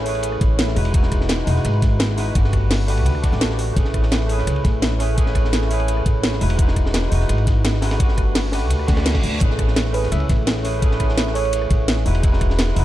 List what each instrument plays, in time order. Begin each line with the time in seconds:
Already playing: upright bass A1, tine electric piano A3 C#4 E4 G#4 B4
0.03 tine electric piano A3 C#4 E4, open hi-hat, ride
0.07 tine electric piano G#4 B4
0.15 ride
0.23 closed hi-hat, ride
0.32 cross-stick
0.41 upright bass A1, kick, closed hi-hat, ride
0.59 snare, closed hi-hat, ride
0.68 snare
0.75 upright bass E1, tine electric piano G#3 D#4 E4 F#4 B4, open hi-hat, ride
0.85 ride
0.91 tine electric piano G#3 D#4 E4, kick, closed hi-hat, ride
0.96 tine electric piano F#4 B4
1.03 snare
1.12 kick, cross-stick, closed hi-hat, ride
1.21 snare
1.29 snare, closed hi-hat, ride
1.39 snare
1.44 upright bass E1, tine electric piano G#3 D#4 E4, open hi-hat, ride
1.49 tine electric piano F#4 B4
1.56 snare
1.65 upright bass G#1, cross-stick, closed hi-hat, ride
1.73 ride
1.82 kick, snare, closed hi-hat, ride
2.00 snare, closed hi-hat, ride
2.09 snare
2.16 tine electric piano G#3 D#4 E4 F#4 B4, snare, open hi-hat, ride
2.32 upright bass G1, tine electric piano A3 D4 F#4, kick, closed hi-hat, ride
2.37 tine electric piano G4 B4
2.44 snare
2.53 kick, cross-stick, closed hi-hat, ride
2.71 snare, closed hi-hat, open hi-hat
2.80 snare
2.87 tine electric piano A3 D4 F#4 G4 B4, open hi-hat, ride
2.97 ride
3.06 upright bass D2, closed hi-hat, ride
3.15 cross-stick
3.22 tine electric piano A3 D4 F#4 G4 D5, kick, closed hi-hat, ride
3.32 upright bass A1, snare
3.41 snare, closed hi-hat, ride
3.50 snare
3.58 snare, open hi-hat, ride
3.73 upright bass A1, tine electric piano A3 C#4 E4, kick, closed hi-hat, ride
3.78 tine electric piano G#4 B4
3.85 snare
3.94 kick, cross-stick, closed hi-hat, ride
4.03 snare
4.12 snare, closed hi-hat, ride
4.21 snare
4.26 tine electric piano A3 C#4 E4, open hi-hat, ride
4.31 tine electric piano G#4 B4
4.38 snare
4.47 upright bass C#2, cross-stick, closed hi-hat, ride
4.56 ride
4.64 upright bass A1, kick, snare, closed hi-hat, ride
4.82 snare, closed hi-hat, ride
4.91 snare
4.98 tine electric piano A3 C#4 E4 G#4 B4, snare, open hi-hat, ride
5.15 tine electric piano A3 C#4 E4, kick, closed hi-hat, ride
5.19 tine electric piano G#4 B4
5.26 snare
5.35 kick, cross-stick, closed hi-hat, ride
5.45 snare
5.53 snare, closed hi-hat, ride
5.62 snare
5.67 tine electric piano A3 C#4 E4, open hi-hat, ride
5.72 tine electric piano G#4 B4
5.80 ride
5.88 closed hi-hat, ride
5.97 cross-stick
6.06 upright bass A1, kick, closed hi-hat, ride
6.23 snare, closed hi-hat, ride
6.33 snare
6.40 upright bass E1, tine electric piano G#3 D#4 E4 F#4 B4, open hi-hat, ride
6.50 ride
6.56 tine electric piano G#3 D#4 E4, kick, closed hi-hat, ride
6.60 tine electric piano F#4 B4
6.68 snare
6.76 kick, cross-stick, closed hi-hat, ride
6.86 snare
6.94 snare, closed hi-hat, ride
7.03 snare
7.08 upright bass E1, tine electric piano G#3 D#4 E4, open hi-hat, ride
7.13 tine electric piano F#4 B4
7.20 snare
7.29 upright bass G#1, cross-stick, closed hi-hat, ride
7.38 ride
7.46 kick, snare, closed hi-hat, ride
7.65 snare, closed hi-hat, ride
7.74 snare
7.81 tine electric piano G#3 D#4 E4 F#4 B4, snare, open hi-hat, ride
7.91 snare, ride
7.97 upright bass G1, tine electric piano A3 D4 F#4, kick, closed hi-hat, ride
8.02 tine electric piano G4 B4
8.08 snare
8.18 kick, cross-stick, closed hi-hat, ride
8.35 snare, closed hi-hat, open hi-hat
8.45 snare
8.51 tine electric piano A3 D4 F#4 G4 B4, snare, open hi-hat, ride
8.61 ride
8.70 upright bass D2, closed hi-hat, ride, reverse cymbal
8.79 cross-stick
8.87 upright bass D2, tine electric piano A3 D4 F#4 G4 D5, kick, snare, closed hi-hat, ride
8.97 snare, ride
9.06 snare, closed hi-hat, ride
9.14 kick, snare, ride
9.23 upright bass D2, open hi-hat
9.38 upright bass A1, tine electric piano A3 C#4 E4, kick, closed hi-hat, ride
9.43 tine electric piano G#4 B4
9.50 snare
9.59 kick, cross-stick, closed hi-hat, ride
9.68 snare
9.76 snare, closed hi-hat, ride
9.85 snare
9.91 tine electric piano A3 C#4 E4, soft synth lead B4, open hi-hat, ride
9.96 tine electric piano G#4 B4
10.03 soft synth lead B4, snare
10.12 upright bass C#2, soft synth lead E5, cross-stick, closed hi-hat, ride
10.20 ride
10.29 upright bass A1, kick, snare, closed hi-hat, ride
10.47 snare, closed hi-hat, ride
10.57 snare
10.63 tine electric piano A3 C#4 E4 G#4 B4, snare, open hi-hat, ride
10.79 tine electric piano A3 C#4 E4, kick, closed hi-hat, ride
10.84 tine electric piano G#4 B4
10.91 snare
11.00 kick, cross-stick, closed hi-hat, ride
11.09 snare
11.17 snare, closed hi-hat, ride
11.27 snare
11.32 tine electric piano A3 C#4 E4, soft synth lead C#5, open hi-hat, ride
11.37 tine electric piano G#4 B4
11.45 ride
11.53 closed hi-hat, ride
11.62 cross-stick
11.71 upright bass A1, kick, closed hi-hat, ride
11.88 snare, closed hi-hat, ride
11.96 snare
12.04 upright bass E1, tine electric piano G#3 D#4 E4 F#4 B4, open hi-hat, ride
12.15 ride
12.20 tine electric piano G#3 D#4 E4, kick, closed hi-hat, ride
12.25 tine electric piano F#4 B4
12.33 snare
12.41 kick, cross-stick, closed hi-hat, ride
12.50 snare
12.59 snare, closed hi-hat, ride
12.68 snare
12.73 upright bass E1, tine electric piano G#3 D#4 E4, open hi-hat, ride
12.78 tine electric piano F#4 B4